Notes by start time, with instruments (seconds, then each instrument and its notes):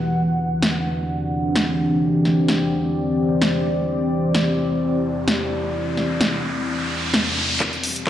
Already playing: analog synth pad E3 B3 G4, ambient pad E4 B4 F#5
0.16 analog synth pad C4 D4, ambient pad C4
0.30 ambient pad G4
0.62 snare
1.51 ambient pad D5
1.56 snare
2.25 snare
2.48 snare
3.42 snare
3.88 analog synth pad E4, riser
4.35 snare
5.28 snare
5.97 snare
6.21 snare
7.14 snare
7.60 analog synth pad E3 B3 G4, ambient pad E4, kick, clap, riser
7.73 closed hi-hat
7.83 open hi-hat
7.96 closed hi-hat